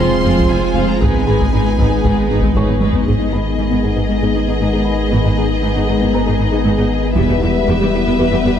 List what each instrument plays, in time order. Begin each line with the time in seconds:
Already playing: sub bass F1, trombone section F3 C4, ambient pad G#3 C4 F4 G#4, violin section G#4 C5
0.00 viola section G#3 F4, violin section C6, taiko
0.23 double bass section F1, cello section F2, viola section G#3 F4, synth pluck C4, violin section G#4 C5
0.38 synth pluck F3, taiko
0.48 double bass section F1, cello section F2, viola section G#3 F4, synth pluck F4, violin section G#4 C5 G#5
0.62 synth pluck G#3
0.74 double bass section F1, cello section F2, synth pluck F3, viola section G#3 F4, violin section G#4 C5 F5
0.88 synth pluck G#3, violin section A#5
1.01 double bass section G#1, sub bass G#1, cello section G#2, trombone section D#3 B3, synth pluck G#3, ambient pad G#3 B3 D#4 G#4, viola section G#3 D#4, violin section G#4 B4 G#5, taiko
1.14 synth pluck B3
1.26 double bass section G#1, cello section G#2, viola section G#3 D#4, synth pluck G#4, violin section G#4 B4, grand piano B5
1.40 synth pluck G#3, taiko
1.52 double bass section G#1, cello section G#2, viola section G#3 D#4, synth pluck D#4, violin section G#4 B4
1.66 synth pluck D#4
1.78 double bass section G#1, cello section G#2, viola section G#3 D#4, synth pluck G#3, violin section G#4 B4, taiko
1.92 synth pluck G#4
2.03 double bass section G#1, cello section G#2, viola section G#3 D#4, synth pluck G#3, violin section G#4 B4, taiko
2.27 double bass section G#1, cello section G#2, viola section G#3 D#4, synth pluck D#4, violin section G#4 B4
2.42 synth pluck G#3, taiko
2.55 double bass section G#1, cello section G#2, viola section G#3 D#4, violin section G#4 B4, synth pluck G#4, grand piano C#5 C#6, taiko high
2.68 synth pluck B3, taiko low-mid
2.80 double bass section G#1, cello section G#2, viola section G#3 D#4, synth pluck G#3, violin section G#4 B4, taiko high
2.93 synth pluck B3, taiko low
3.05 double bass section G#1, sub bass G#1, cello section G#2, french horn section D#3 B3, ambient pad G#3 B3 D#4 G#4, synth pluck G#3, viola section B3 D#4, violin section G#4 D#5, taiko
3.18 cello section G#2, viola section B3 D#4, synth pluck D#4
3.32 cello section G#2, viola section B3 D#4, synth pluck G#4, grand piano B5
3.57 cello section G#2, synth pluck G#3, viola section B3 D#4
3.70 cello section G#2, viola section B3 D#4, synth pluck B3
3.82 cello section G#2, viola section B3 D#4, synth pluck G#4
3.96 cello section G#2, viola section B3 D#4, synth pluck B3
4.09 cello section G#2, synth pluck G#3, viola section B3 D#4
4.22 cello section G#2, viola section B3 D#4, synth pluck G#4
4.35 cello section G#2, viola section B3 D#4, synth pluck D#4
4.48 cello section G#2, viola section B3 D#4, synth pluck G#4
4.60 cello section G#2, synth pluck G#3, viola section B3 D#4
4.73 cello section G#2, viola section B3 D#4, synth pluck G#4
4.85 grand piano B5
5.10 double bass section G#1, cello section G#2, synth pluck G#3, viola section B3 D#4
5.24 cello section G#2, viola section B3 D#4, synth pluck D#4
5.37 cello section G#2, viola section B3 D#4, synth pluck G#4
5.62 cello section G#2, synth pluck G#3, viola section B3 D#4
5.76 cello section G#2, viola section B3 D#4, synth pluck B3
5.88 cello section G#2, viola section B3 D#4, synth pluck G#4
6.01 cello section G#2, synth pluck B3, viola section B3 D#4
6.14 cello section G#2, synth pluck G#3, viola section B3 D#4, grand piano B4 A#5
6.26 cello section G#2, viola section B3 D#4, synth pluck G#4
6.38 cello section G#2, viola section B3 D#4, synth pluck D#4
6.52 cello section G#2, viola section B3 D#4, synth pluck G#4
6.64 cello section G#2, synth pluck G#3, viola section B3 D#4
6.78 cello section G#2, viola section B3 D#4, synth pluck G#4
7.16 double bass section E1, sub bass E1, cello section E2, synth pluck E3, french horn section G3 B3, ambient pad G3 B3 E4 B4, viola section B3 G4, violin section B4 E5, taiko
7.28 cello section E2, viola section B3 G4, synth pluck B3
7.42 cello section E2, viola section B3 G4, synth pluck E4
7.68 cello section E2, synth pluck E3, viola section B3 G4
7.81 cello section E2, synth pluck G3, viola section B3 G4
7.94 cello section E2, viola section B3 G4, synth pluck E4
8.06 cello section E2, synth pluck G3, viola section B3 G4
8.18 cello section E2, synth pluck E3, viola section B3 G4
8.31 cello section E2, viola section B3 G4, synth pluck E4
8.43 cello section E2, synth pluck B3, viola section B3 G4